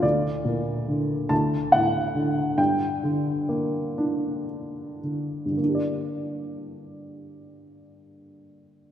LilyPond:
<<
  \new Staff \with { instrumentName = "Upright piano" } { \time 6/8 \key g \minor \tempo 4. = 40 d''4. a''8 fis''4 | g''2 r4 | r2. | }
  \new Staff \with { instrumentName = "Upright piano" } { \clef bass \time 6/8 \key g \minor d,8 bes,8 d8 d,8 a,8 d8 | g,8 d8 bes8 d'4 d8 | <g, d bes d' g' d''>2. | }
>>